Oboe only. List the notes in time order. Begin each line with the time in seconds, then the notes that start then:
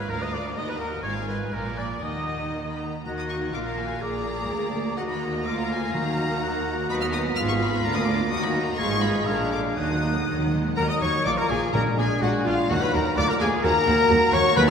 Already playing: B4
0.09 A#4
0.22 D#5
0.33 D5
0.57 D#5
0.69 B4
0.80 A#4
1.03 C#5
1.28 B4
1.53 A#4
1.78 D5
2.04 D#5
3.05 F#5
3.53 F5
4.01 D5
4.50 D5
4.97 D#5
5.46 F5
6.42 F#5
6.90 D#5
7.36 F5
7.84 F5
8.31 D#5
9.27 F5
9.76 F#5
10.77 A#4
10.89 D#5
11.01 C#5
11.26 D5
11.37 A#4
11.49 G#4
11.74 A#4
11.98 G#4
12.22 F#4
12.46 F4
12.70 F#4
12.82 B4
12.94 A#4
13.17 D5
13.28 A#4
13.40 G#4
13.63 A#4
14.33 C#5
14.56 B4